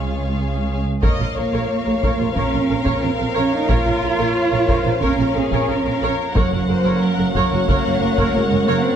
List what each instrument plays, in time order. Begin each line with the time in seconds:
Already playing: cello section C#2, double bass section C#2, french horn section G#3, viola section F4, violin section G#4 C#5 F5
1.02 double bass section A#1, trombone section F2 A#3, cello section A#3, french horn section A#4 C#5, viola section A#4 C#5, violin section D#5 F5, taiko
1.20 double bass section A#1, viola section F4 A#4
1.36 double bass section A#1, viola section A#4, violin section C#5
1.52 double bass section A#1, viola section A#4 C#5
1.86 double bass section A#1, viola section A#4
2.03 double bass section A#1, viola section A#4 C#5, taiko
2.19 double bass section A#1, viola section F4 A#4
2.35 double bass section A#1, cello section C#4, violin section A#4, viola section A#4 C#5, taiko
2.52 double bass section A#1, viola section F4 A#4
2.69 double bass section A#1, viola section A#4, violin section A#4
2.85 double bass section A#1, viola section A#4 C#5, taiko
3.02 double bass section A#1, cello section C4, viola section F4 A#4
3.19 double bass section A#1, viola section A#4
3.35 double bass section A#1, cello section C#4, viola section A#4 C#5
3.53 cello section D#4
3.69 double bass section A#1, cello section F4, viola section A#4 C#5, taiko
3.86 double bass section A#1, viola section F4 A#4
4.02 double bass section A#1, viola section A#4
4.19 double bass section A#1, viola section A#4 C#5
4.37 violin section C#5
4.52 double bass section A#1, viola section A#4
4.68 double bass section A#1, viola section A#4 C#5, violin section C5, taiko
4.85 double bass section A#1, viola section F4 A#4
5.01 double bass section A#1, cello section C#4, viola section A#4 C#5, violin section A#4, taiko
5.18 double bass section A#1, viola section F4 A#4
5.35 double bass section A#1, violin section G#4, viola section A#4
5.52 double bass section A#1, viola section A#4 C#5, taiko
5.68 double bass section A#1, viola section F4 A#4, violin section A#4
5.85 double bass section A#1, viola section A#4
6.02 double bass section A#1, viola section A#4 C#5
6.35 double bass section F#1, trombone section F#2 A#3, cello section F#3, french horn section C#4 A#4, viola section A#4 C#5, violin section C#5 F#5, taiko
6.52 double bass section F#1, viola section F#4 A#4
6.69 double bass section F#1, viola section A#4, violin section C5
6.86 double bass section F#1, viola section A#4 C#5
7.02 violin section A#4
7.19 double bass section F#1, viola section A#4
7.35 double bass section F#1, viola section A#4 C#5, violin section C#5, taiko
7.52 double bass section F#1, viola section F#4 A#4
7.68 double bass section F#1, cello section A#3, viola section A#4 C#5, taiko
7.85 double bass section F#1, viola section F#4 A#4
8.02 double bass section F#1, viola section A#4
8.18 double bass section F#1, viola section A#4 C#5, taiko
8.35 double bass section F#1, cello section G#3, viola section F#4 A#4
8.51 double bass section F#1, viola section A#4
8.68 double bass section F#1, cello section A#3, viola section A#4 C#5
8.85 cello section C4